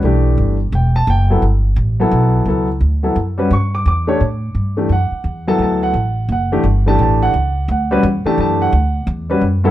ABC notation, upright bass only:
X:1
M:4/4
L:1/8
Q:"Swing" 1/4=173
K:D
V:1 name="Upright bass" clef=bass
B,,,2 G,,,2 E,,,2 F,,,2 | G,,,2 A,,,2 B,,,2 C,,2 | D,,2 F,,2 G,,2 E,,2 | A,,2 G,,2 F,, z E,,2 |
D,,2 A,,,2 F,,,2 G,,,2 | A,,,2 C,,2 D,,2 E,, z | F,,2 D,,2 E,,2 F,,2 |]